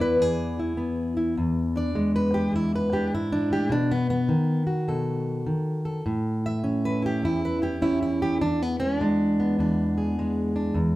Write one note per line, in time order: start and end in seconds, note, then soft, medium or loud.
0.00 0.19 E2 medium
0.00 0.77 B3 medium
0.00 0.58 E4 soft
0.00 0.22 B4 medium
0.00 0.60 D5 medium
0.20 1.36 E2 medium
0.20 1.97 G#4 medium
0.59 1.16 E4 soft
0.77 1.95 B3 medium
1.17 1.35 E4 soft
1.38 2.51 E2 medium
1.76 2.91 D4 soft
1.76 2.15 D5 medium
1.95 3.69 G#3 medium
2.16 2.55 B4 medium
2.34 2.54 G4 medium
2.52 3.12 E2 medium
2.52 2.74 E4 medium
2.76 3.14 B4 medium
2.92 3.31 D4 soft
2.92 3.13 G4 medium
3.14 3.52 G#2 medium
3.14 3.72 E4 medium
3.32 3.71 D4 medium
3.50 3.71 A2 medium
3.50 3.72 G4 medium
3.69 4.29 B2 medium
3.69 3.91 D4 medium
3.91 4.09 B3 medium
4.10 4.66 B3 medium
4.29 5.45 D#3 medium
4.67 6.03 F#4 soft
4.88 5.47 B2 medium
4.88 5.84 A4 soft
5.47 6.03 D#3 medium
5.85 6.04 A4 soft
6.06 7.23 A2 medium
6.46 7.24 E5 medium
6.64 7.81 C#4 medium
6.85 7.05 B4 medium
7.02 7.25 E4 soft
7.02 7.44 G4 medium
7.22 8.40 E2 medium
7.22 7.61 E4 medium
7.45 7.63 B4 medium
7.62 7.82 E4 soft
7.62 8.21 G4 medium
7.82 8.38 C#4 medium
7.82 8.01 E4 medium
8.03 8.41 E4 medium
8.22 8.41 G4 medium
8.41 9.58 E2 medium
8.41 8.62 D4 medium
8.62 8.79 B3 medium
8.80 9.01 G#3 soft
8.80 9.01 C#4 loud
9.01 10.18 G#3 medium
9.01 9.58 D4 loud
9.40 10.96 B3 soft
9.59 10.74 E2 medium
9.59 10.55 D4 medium
9.98 10.96 G#4 soft
10.19 10.96 G#3 medium
10.56 10.77 D4 soft
10.74 10.96 E2 medium